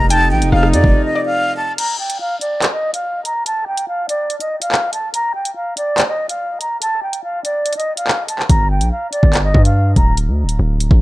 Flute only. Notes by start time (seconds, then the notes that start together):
0.10 A5
0.31 G5
0.53 F5
0.73 D5
1.05 D#5
1.26 F5
1.57 A5
1.78 A#5
2.00 G5
2.20 F5
2.41 D5
2.72 D#5
2.94 F5
3.25 A#5
3.47 A5
3.67 G5
3.88 F5
4.09 D5
4.41 D#5
4.61 F5
4.94 A5
5.14 A#5
5.35 G5
5.56 F5
5.77 D5
6.08 D#5
6.29 F5
6.61 A#5
6.82 A5
7.03 G5
7.24 F5
7.44 D5
7.77 D#5
7.97 F5
8.28 A5
8.49 A#5
8.71 G5
8.92 F5
9.12 D5
9.44 D#5
9.65 F5
9.96 A#5